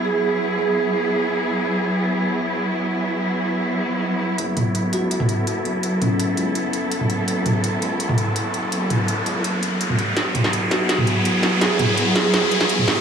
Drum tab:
HH |----------------|----------------|----------------|x-x-x-x-x-x-x-x-|
SD |----------------|----------------|----------------|----------------|
T2 |----------------|----------------|----------------|--o------o------|

HH |x-x-x-x-x-x-x-x-|x-x-x-x-x-x-x-x-|x-x-x-x-x-x-x-x-|x-x-x-x-x-x-x-x-|
SD |----------------|----------------|----------------|o--o--o-o-----o-|
T2 |--o----------o--|--o------o------|--o----------o--|--o------o------|

HH |x-x-x-x-x-x-x-x-|
SD |o-----o-o--o--o-|
T2 |--o----------o--|